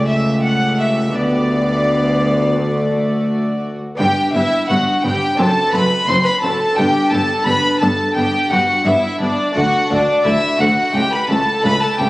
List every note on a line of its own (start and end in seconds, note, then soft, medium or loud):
0.00 1.10 C#2 medium
0.00 1.11 C#2 medium
0.00 1.10 A3 medium
0.00 1.09 G4 soft
0.00 2.57 G4 medium
0.07 0.42 E5 medium
0.07 0.43 E5 medium
0.42 0.78 F#5 medium
0.78 1.14 E5 medium
0.78 1.16 E5 medium
1.10 3.79 D2 medium
1.10 2.51 B3 soft
1.10 2.52 D4 soft
1.10 2.53 G4 soft
1.14 3.75 D2 soft
1.14 3.80 D2 medium
1.14 2.55 B3 medium
1.14 3.60 D5 medium
1.14 3.64 D5 medium
2.52 3.93 A3 soft
2.52 3.95 F#4 soft
2.57 3.79 A3 medium
2.57 3.77 F#4 medium
3.95 5.33 B3 medium
3.95 4.07 B3 medium
3.95 5.34 D4 medium
3.95 4.32 G5 loud
3.99 4.07 G1 medium
3.99 4.31 G2 medium
3.99 4.08 G2 medium
3.99 4.32 G4 medium
4.34 4.42 G1 medium
4.34 4.43 G2 medium
4.34 4.66 G2 medium
4.34 4.42 B3 medium
4.34 4.69 E4 medium
4.34 4.68 E5 loud
4.34 4.69 E5 medium
4.68 4.76 G1 medium
4.68 4.78 G2 medium
4.68 5.01 G2 medium
4.68 4.77 B3 medium
4.68 5.03 F#4 medium
4.68 5.03 F#5 loud
4.68 5.04 F#5 medium
5.03 5.12 G1 medium
5.03 5.36 G2 medium
5.03 5.12 G2 medium
5.03 5.12 B3 medium
5.03 5.38 G4 medium
5.03 5.39 G5 loud
5.03 5.39 G5 medium
5.35 6.72 C4 medium
5.35 5.46 C4 medium
5.35 6.73 D4 medium
5.35 5.73 A4 medium
5.35 5.74 A5 loud
5.39 5.47 F#1 medium
5.39 5.47 F#2 medium
5.39 5.70 F#2 medium
5.39 5.76 A5 medium
5.72 5.82 F#1 medium
5.72 6.05 F#2 medium
5.72 5.82 F#2 medium
5.72 5.81 C4 medium
5.72 6.08 B4 medium
5.72 6.08 B5 loud
5.72 6.09 B5 medium
6.07 6.15 F#1 medium
6.07 6.40 F#2 medium
6.07 6.16 F#2 medium
6.07 6.16 C4 medium
6.07 6.15 C5 loud
6.07 6.26 C6 loud
6.07 6.24 C6 loud
6.23 6.31 B4 medium
6.23 6.42 B5 medium
6.23 6.44 B5 loud
6.41 6.50 F#1 medium
6.41 6.51 F#2 medium
6.41 6.75 F#2 medium
6.41 6.50 C4 medium
6.41 6.77 A4 medium
6.41 6.78 A5 medium
6.41 6.78 A5 loud
6.74 6.85 G1 medium
6.74 9.50 B3 medium
6.74 6.85 B3 medium
6.74 9.51 D4 medium
6.74 7.12 G4 medium
6.74 7.11 G5 loud
6.74 7.12 G5 loud
6.78 6.86 G2 medium
6.78 7.10 G2 medium
7.10 7.20 G1 medium
7.10 7.44 G2 medium
7.10 7.21 G2 medium
7.10 7.20 B3 medium
7.10 7.47 A4 medium
7.10 7.44 A5 medium
7.10 7.46 A5 loud
7.45 7.54 G1 medium
7.45 7.78 G2 medium
7.45 7.55 G2 medium
7.45 7.54 B3 medium
7.45 7.82 B4 medium
7.45 7.80 B5 loud
7.45 7.81 B5 loud
7.80 7.89 G1 medium
7.80 8.13 G2 medium
7.80 7.90 G2 medium
7.80 7.89 B3 medium
7.80 8.16 A4 medium
7.80 8.15 A5 medium
7.80 8.16 A5 loud
8.15 8.23 G1 medium
8.15 8.48 G2 medium
8.15 8.24 G2 medium
8.15 8.24 B3 medium
8.15 8.51 G4 loud
8.15 8.50 G5 loud
8.15 8.52 G5 medium
8.50 8.58 G1 medium
8.50 8.83 G2 medium
8.50 8.59 G2 medium
8.50 8.59 B3 medium
8.50 8.86 F#4 medium
8.50 8.86 F#5 loud
8.50 8.88 F#5 medium
8.84 8.93 G1 medium
8.84 8.93 G2 medium
8.84 9.17 G2 medium
8.84 8.94 B3 medium
8.84 9.20 E4 medium
8.84 9.21 E5 loud
8.84 9.20 E5 medium
9.19 9.27 G1 medium
9.19 9.53 G2 medium
9.19 9.29 G2 medium
9.19 9.29 B3 medium
9.19 9.54 D4 medium
9.19 9.58 D5 medium
9.19 9.56 D5 loud
9.51 9.63 D2 medium
9.51 10.89 A3 medium
9.51 10.89 D4 medium
9.51 9.89 F#4 loud
9.56 9.87 D2 medium
9.56 9.64 D2 medium
9.56 9.65 A3 medium
9.56 9.91 F#5 loud
9.56 9.91 F#5 medium
9.88 9.98 D2 medium
9.88 10.22 D2 medium
9.88 9.99 D2 medium
9.88 9.99 A3 medium
9.88 10.24 D4 loud
9.88 10.26 D5 loud
9.93 10.24 D5 medium
10.24 10.33 D2 medium
10.24 10.56 D2 medium
10.24 10.33 D2 medium
10.24 10.33 A3 medium
10.24 10.59 E4 medium
10.24 10.62 E5 loud
10.24 10.60 E5 loud
10.58 10.67 D2 medium
10.58 10.91 D2 medium
10.58 10.68 D2 medium
10.58 10.68 A3 medium
10.58 10.94 F#4 medium
10.58 10.95 F#5 loud
10.58 10.96 F#5 medium
10.90 12.10 A3 medium
10.90 12.10 E4 medium
10.90 12.10 G4 medium
10.94 11.02 C#2 medium
10.94 11.03 C#2 medium
10.94 11.04 A3 medium
10.94 11.12 G4 loud
10.94 11.14 G5 medium
10.94 11.12 G5 loud
11.11 11.29 B4 medium
11.11 11.29 B5 medium
11.11 11.30 B5 loud
11.29 11.37 C#2 medium
11.29 11.38 C#2 medium
11.29 11.38 A3 medium
11.29 11.64 A4 medium
11.29 11.63 A5 medium
11.29 11.64 A5 loud
11.64 11.72 C#2 medium
11.64 11.73 A3 medium
11.64 11.82 B4 loud
11.64 11.82 B5 loud
11.80 11.99 A4 medium
11.80 12.00 A5 medium
11.80 11.99 A5 medium
11.98 12.06 C#2 medium
11.98 12.07 C#2 medium
11.98 12.07 A3 medium
11.98 12.10 G4 medium
11.98 12.10 G5 loud
11.98 12.10 G5 medium